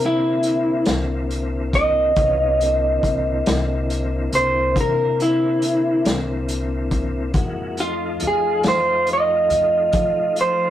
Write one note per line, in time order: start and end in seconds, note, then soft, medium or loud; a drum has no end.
0.00 0.83 C3 medium
0.00 2.12 D3 medium
0.00 2.12 A#3 medium
0.00 2.13 C4 medium
0.00 2.12 E4 medium
0.06 0.87 E4 loud
0.43 closed hi-hat medium
0.85 2.12 C2 medium
0.85 snare loud
0.85 closed hi-hat medium
1.31 closed hi-hat soft
1.73 4.30 D#5 medium
1.73 kick medium
1.73 closed hi-hat medium
2.16 2.99 C2 medium
2.16 2.60 B3 medium
2.16 2.60 C#4 medium
2.16 2.61 D#4 medium
2.16 2.60 F4 medium
2.16 kick loud
2.16 closed hi-hat medium
2.61 7.32 D3 medium
2.61 7.32 A#3 medium
2.61 7.32 C4 medium
2.61 7.32 E4 medium
2.61 closed hi-hat medium
3.03 3.43 C2 medium
3.03 kick medium
3.03 closed hi-hat medium
3.46 4.29 C2 medium
3.46 snare loud
3.46 closed hi-hat medium
3.90 closed hi-hat medium
4.32 4.72 C2 medium
4.32 4.76 C5 medium
4.32 closed hi-hat medium
4.76 6.01 C3 loud
4.76 kick medium
4.76 closed hi-hat medium
4.81 5.20 A#4 medium
5.20 6.04 E4 medium
5.20 closed hi-hat medium
5.62 closed hi-hat medium
6.05 7.31 C2 medium
6.05 snare loud
6.05 closed hi-hat medium
6.49 closed hi-hat medium
6.91 kick medium
6.91 closed hi-hat medium
7.33 8.16 F2 medium
7.33 7.79 G#3 medium
7.33 7.79 A#3 medium
7.33 7.79 E4 medium
7.33 7.79 F#4 medium
7.33 kick loud
7.33 closed hi-hat medium
7.77 10.70 F3 medium
7.77 10.70 A3 medium
7.77 10.70 D#4 medium
7.77 10.70 F4 medium
7.77 8.21 F4 loud
7.77 closed hi-hat medium
8.20 8.61 F2 medium
8.20 closed hi-hat medium
8.27 8.66 G#4 medium
8.63 9.46 F2 medium
8.63 snare loud
8.63 closed hi-hat medium
8.68 9.08 C5 loud
9.07 closed hi-hat medium
9.13 10.36 D#5 medium
9.50 9.90 F2 medium
9.50 closed hi-hat medium
9.93 10.70 F3 loud
9.93 kick medium
9.93 closed hi-hat medium
10.36 closed hi-hat medium
10.41 10.70 C5 medium